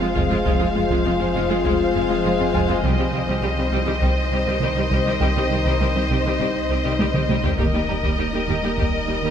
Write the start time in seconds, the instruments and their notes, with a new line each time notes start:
Already playing: sub bass F1, synth drone F3 C4 G#4 F5, french horn section G#3 F4, felt piano G#4 G#5, violin section C5 F5, impact
0.01 cello section F2, viola section G#3 F4, synth pluck C4
0.15 double bass section F1, cello section F2, synth pluck F3, viola section G#3 F4, taiko
0.31 cello section F2, synth pluck G#3, viola section G#3 F4
0.45 double bass section F1, cello section F2, synth pluck F3, viola section G#3 F4, taiko
0.60 cello section F2, viola section G#3 F4, synth pluck F4
0.75 double bass section F1, cello section F2, synth pluck G#3, viola section G#3 F4
0.90 cello section F2, synth pluck F3, viola section G#3 F4, taiko
1.05 double bass section F1, cello section F2, viola section G#3 F4, synth pluck C4
1.20 cello section F2, viola section G#3 F4, synth pluck F4
1.34 double bass section F1, cello section F2, synth pluck F3, viola section G#3 F4, felt piano F5
1.50 cello section F2, viola section G#3 F4, synth pluck G#3
1.65 double bass section F1, cello section F2, synth pluck F3, viola section G#3 F4, taiko
1.94 double bass section F1, cello section F2, viola section G#3 F4, synth pluck F4
2.09 cello section F2, synth pluck F3, viola section G#3 F4
2.25 double bass section F1, cello section F2, viola section G#3 F4, synth pluck G#3
2.39 cello section F2, viola section G#3 F4, synth pluck C4
2.53 double bass section F1, cello section F2, synth pluck F3, viola section G#3 F4, felt piano G#4 G#5, taiko
2.69 cello section F2, viola section G#3 F4, synth pluck G#3
2.82 sub bass C2, double bass section C2, cello section C2, synth pluck C3, french horn section D#3 D#4, synth drone D#3 C4 D#4 D#5, viola section G3 G4, violin section C5 D#5, taiko
2.98 cello section C2, viola section G3 G4, synth pluck C4
3.13 cello section C2, double bass section C2, synth pluck D#3, viola section G3 G4
3.28 cello section C2, synth pluck C3, viola section G3 G4, taiko
3.43 cello section C2, double bass section C2, viola section G3 G4, synth pluck G3
3.58 cello section C2, viola section G3 G4, synth pluck C4
3.72 double bass section C2, cello section C2, synth pluck C3, viola section G3 G4
3.86 cello section C2, synth pluck D#3, viola section G3 G4
4.02 double bass section C2, cello section C2, synth pluck C3, viola section G3 G4, taiko
4.32 double bass section C2, cello section C2, viola section G3 G4, synth pluck C4
4.47 cello section C2, synth pluck C3, viola section G3 G4
4.61 cello section C2, double bass section C2, synth pluck D#3, viola section G3 G4
4.77 cello section C2, synth pluck G3, viola section G3 G4
4.91 cello section C2, double bass section C2, synth pluck C3, viola section G3 G4, taiko
5.06 cello section C2, synth pluck D#3, viola section G3 G4
5.21 double bass section C2, cello section C2, synth pluck C3, viola section G3 G4, felt piano G5, taiko
5.36 cello section C2, viola section G3 G4, synth pluck C4
5.50 double bass section C2, cello section C2, synth pluck D#3, viola section G3 G4
5.65 cello section C2, synth pluck C3, viola section G3 G4, taiko
5.80 cello section C2, double bass section C2, viola section G3 G4, synth pluck G3
5.95 cello section C2, viola section G3 G4, synth pluck C4
6.09 cello section C2, double bass section C2, synth pluck C3, viola section G3 G4
6.25 cello section C2, synth pluck D#3, viola section G3 G4
6.40 cello section C2, double bass section C2, synth pluck C3, viola section G3 G4, felt piano D#5, taiko
6.70 cello section C2, double bass section C2, viola section G3 G4, synth pluck C4
6.84 cello section C2, synth pluck C3, viola section G3 G4
6.99 cello section C2, double bass section C2, synth pluck D#3, viola section G3 G4, taiko high
7.14 cello section C2, viola section G3 G4, synth pluck G3, taiko mid
7.29 double bass section C2, cello section C2, synth pluck C3, viola section G3 G4, taiko high
7.44 cello section C2, synth pluck D#3, viola section G3 G4, taiko low
7.58 sub bass D#1, double bass section D#2, cello section D#2, synth pluck D#3, synth drone G3 A#3 A#4 D#5, french horn section G3 D#4, viola section G3 G4, violin section A#4 D#5, taiko
7.74 cello section D#2, viola section G3 G4, synth pluck D#4
7.88 double bass section D#2, cello section D#2, viola section G3 G4, synth pluck G3, felt piano A#5
8.03 cello section D#2, synth pluck D#3, viola section G3 G4, taiko
8.18 double bass section D#2, cello section D#2, viola section G3 G4, synth pluck A#3
8.33 cello section D#2, viola section G3 G4, synth pluck D#4
8.48 double bass section D#2, cello section D#2, synth pluck D#3, viola section G3 G4
8.63 cello section D#2, synth pluck G3, viola section G3 G4
8.77 double bass section D#2, cello section D#2, synth pluck D#3, viola section G3 G4, taiko
9.07 cello section D#2, double bass section D#2, viola section G3 G4, synth pluck D#4
9.22 cello section D#2, synth pluck D#3, viola section G3 G4